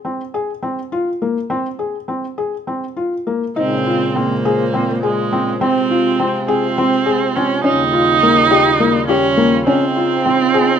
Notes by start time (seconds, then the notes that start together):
0.05 C4
0.34 G#4
0.63 C4
0.92 F4
1.22 A#3
1.50 C4
1.79 G#4
2.08 C4
2.38 G#4
2.67 C4
2.97 F4
3.27 A#3
3.56 A#2 C#3 G#3 C4 D#4 C5
3.86 F4
4.16 A#3 C4
4.45 G#4
4.74 C4
5.03 G#3 G#4
5.33 C4
5.61 C3 C4 F4
5.91 F4
6.20 C4
6.48 C4 G#4
6.78 C4
7.06 G#4
7.36 C4 C#4
7.64 D#2 C#3 G3 C#4 D#4
7.93 F4
8.23 A#3
8.51 G4
8.80 A#3
9.07 C#4 G4
9.37 A#3
9.66 C4 C#4 D#4 F4
9.96 F4
10.26 C4
10.54 G#4